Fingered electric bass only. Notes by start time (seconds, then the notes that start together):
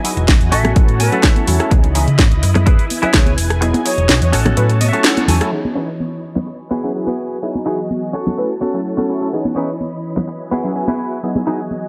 0.17 E1
0.28 B1
0.41 E2
0.52 A1
0.76 A2
1.47 E2
1.71 C#2
2.07 C#3
2.19 G#2
2.31 C#2
2.43 F#2
3.03 muted fingered electric bass stroke
3.14 C#2
3.38 E1
3.98 E1
4.09 B1
4.22 E2
4.33 A1
4.57 A2
5.28 E2